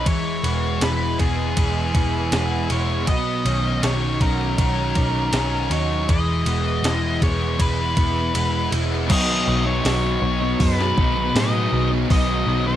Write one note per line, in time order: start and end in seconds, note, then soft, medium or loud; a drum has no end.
0.05 0.41 E1 loud
0.05 0.80 E3 medium
0.05 1.95 E3 medium
0.05 0.81 G#3 medium
0.05 0.84 C#5 loud
0.05 kick loud
0.05 ride medium
0.43 0.78 E1 medium
0.43 2.30 G#3 medium
0.43 2.32 B3 medium
0.43 1.58 B4 medium
0.43 ride medium
0.81 1.16 E1 medium
0.81 1.56 E3 medium
0.81 1.18 G#3 medium
0.81 1.95 E4 medium
0.81 1.20 B4 medium
0.81 snare loud
0.81 ride medium
1.18 1.54 E1 medium
1.18 1.56 G#3 medium
1.18 1.94 B3 medium
1.18 2.75 G#4 medium
1.18 2.70 G#4 medium
1.18 kick medium
1.18 ride medium
1.57 1.92 E1 loud
1.57 3.08 E3 medium
1.57 2.68 G#3 medium
1.57 2.33 B4 medium
1.57 kick medium
1.57 ride loud
1.94 2.29 E1 medium
1.94 4.20 B3 medium
1.94 3.08 E4 medium
1.94 kick medium
1.94 ride medium
2.32 2.67 E1 medium
2.32 3.07 G#3 medium
2.32 3.45 B3 medium
2.32 3.45 B4 medium
2.32 snare loud
2.32 ride medium
2.69 3.08 E1 medium
2.69 3.06 G#3 medium
2.69 3.08 E4 medium
2.69 3.08 G#4 medium
2.69 3.08 C#5 medium
2.69 ride medium
3.06 3.42 B1 loud
3.06 4.96 B2 medium
3.06 3.83 F#3 medium
3.06 5.38 B3 medium
3.06 3.83 D#5 loud
3.06 kick loud
3.06 ride medium
3.45 3.80 B1 medium
3.45 3.81 D#3 medium
3.45 5.32 C#4 medium
3.45 4.58 C#5 medium
3.45 ride medium
3.82 4.18 B1 medium
3.82 4.58 D#3 medium
3.82 4.20 F#3 medium
3.82 4.96 D#4 medium
3.82 4.22 C#5 medium
3.82 snare loud
3.82 ride medium
4.20 4.55 B1 medium
4.20 4.58 F#3 medium
4.20 4.96 C#4 medium
4.20 5.71 F#4 medium
4.20 5.76 A#4 medium
4.20 kick medium
4.20 ride medium
4.58 4.93 B1 medium
4.58 6.09 D#3 medium
4.58 5.70 F#3 medium
4.58 5.33 C#5 medium
4.58 kick medium
4.58 ride medium
4.95 5.30 B1 medium
4.95 6.09 C#4 medium
4.95 6.09 D#4 medium
4.95 kick medium
4.95 ride medium
5.33 5.68 B1 medium
5.33 6.09 F#3 medium
5.33 6.09 C#4 medium
5.33 6.09 C#5 medium
5.33 snare loud
5.33 ride medium
5.70 6.05 D#2 medium
5.70 6.09 F#3 medium
5.70 6.09 D#4 medium
5.70 6.09 F#4 medium
5.70 6.10 C#5 medium
5.70 ride medium
6.09 6.43 E1 medium
6.09 6.83 E3 medium
6.09 7.97 E3 medium
6.09 6.83 G#3 medium
6.09 7.23 D#5 loud
6.09 kick loud
6.09 ride medium
6.45 6.80 E1 medium
6.45 8.33 G#3 medium
6.45 8.32 B3 medium
6.45 7.59 B4 medium
6.45 ride medium
6.83 7.18 E1 medium
6.83 7.58 E3 medium
6.83 7.20 G#3 medium
6.83 7.96 E4 medium
6.83 snare loud
6.83 ride medium
7.22 7.56 E1 loud
7.22 7.57 G#3 medium
7.22 7.96 B3 medium
7.22 8.71 G#4 medium
7.22 7.61 C#5 medium
7.22 kick medium
7.22 ride medium
7.58 7.94 E1 medium
7.58 9.09 E3 medium
7.58 8.70 G#3 medium
7.58 8.34 B4 medium
7.58 8.69 B4 medium
7.58 kick medium
7.58 ride loud
7.97 8.31 E1 medium
7.97 9.09 B3 medium
7.97 9.09 E4 medium
7.97 9.10 E4 medium
7.97 kick medium
7.97 ride medium
8.33 8.69 E1 medium
8.33 9.10 G#3 medium
8.33 9.09 B3 medium
8.33 9.10 B4 medium
8.33 ride loud
8.71 9.10 E1 medium
8.71 9.08 G#3 medium
8.71 9.10 E4 medium
8.71 9.10 G#4 medium
8.71 ride medium
9.08 9.41 B1 loud
9.08 9.83 B2 loud
9.08 9.84 B2 medium
9.08 9.44 D#3 loud
9.08 9.44 F#3 medium
9.08 9.30 F#3 loud
9.08 9.68 F#3 loud
9.08 9.28 B3 loud
9.08 9.26 D#4 loud
9.08 9.66 D#5 loud
9.08 kick loud
9.08 open hi-hat medium
9.08 crash loud
9.12 9.65 B3 loud
9.27 9.47 F#3 medium
9.27 9.48 B3 medium
9.27 9.49 D#4 medium
9.46 9.79 B1 medium
9.46 9.83 D#3 medium
9.46 9.83 F#3 medium
9.46 9.85 F#3 medium
9.46 9.85 B3 medium
9.46 9.86 D#4 medium
9.66 9.86 F#3 medium
9.66 9.87 B3 medium
9.66 10.63 C#5 medium
9.83 10.16 B1 medium
9.83 11.33 B2 medium
9.83 10.79 B2 loud
9.83 10.21 D#3 loud
9.83 10.20 F#3 medium
9.83 10.05 F#3 loud
9.83 10.41 F#3 loud
9.83 10.03 B3 loud
9.83 10.01 D#4 loud
9.83 snare loud
9.83 open hi-hat medium
9.87 10.41 B3 loud
10.02 10.22 F#3 medium
10.02 10.22 B3 medium
10.02 10.22 D#4 medium
10.21 10.54 B1 loud
10.21 11.71 F#3 medium
10.21 muted overdriven electric guitar stroke soft
10.40 10.96 F#3 medium
10.40 10.98 B3 medium
10.40 10.98 D#4 medium
10.40 muted distorted electric guitar stroke medium
10.59 10.91 F#2 loud
10.59 12.07 B2 medium
10.59 12.08 F#3 medium
10.59 11.33 G#3 medium
10.59 12.12 B3 medium
10.59 11.38 B4 medium
10.59 kick loud
10.59 open hi-hat medium
10.79 10.97 F#3 medium
10.79 10.99 B3 medium
10.79 snare soft
10.96 11.29 B1 medium
10.96 11.33 B2 medium
10.96 11.33 D#3 medium
10.96 11.35 F#3 medium
10.96 11.16 F#3 medium
10.96 11.36 B3 medium
10.96 11.16 B3 medium
10.96 12.76 D#4 medium
10.96 11.35 D#4 medium
10.96 kick medium
11.16 muted distorted electric guitar stroke medium
11.33 11.67 A2 medium
11.33 11.91 B2 loud
11.33 11.71 B2 medium
11.33 11.70 D#3 medium
11.33 11.55 F#3 loud
11.33 11.73 F#3 loud
11.33 12.76 G#3 medium
11.33 11.54 B3 loud
11.33 11.51 D#4 loud
11.33 11.88 D#5 loud
11.33 snare loud
11.33 open hi-hat medium
11.38 11.75 B3 loud
11.52 11.71 F#3 medium
11.52 11.73 B3 medium
11.52 11.73 D#4 medium
11.71 12.04 B1 loud
11.71 12.09 B2 medium
11.71 12.08 D#3 medium
11.71 12.09 F#3 medium
11.71 11.92 F#3 medium
11.71 11.93 F#3 medium
11.71 11.91 B3 medium
11.71 11.89 D#4 medium
11.90 12.09 F#3 medium
11.90 12.12 B3 medium
11.90 12.10 B3 medium
11.90 12.11 D#4 medium
11.94 12.10 F#3 medium
12.08 12.42 B1 loud
12.08 12.65 B2 loud
12.08 12.76 B2 medium
12.08 12.45 D#3 loud
12.08 12.47 F#3 medium
12.08 12.29 F#3 loud
12.08 12.68 F#3 loud
12.08 12.29 B3 loud
12.08 12.26 D#4 loud
12.08 12.67 D#5 loud
12.08 kick loud
12.08 open hi-hat medium
12.13 12.66 B3 loud
12.27 12.46 F#3 medium
12.27 12.48 B3 medium
12.27 12.48 D#4 medium
12.46 12.76 B1 medium
12.46 12.76 D#3 medium
12.46 12.76 F#3 medium
12.46 12.76 B3 medium
12.46 12.76 D#4 medium
12.67 12.76 F#3 medium
12.67 12.76 B3 medium
12.67 12.76 C#5 medium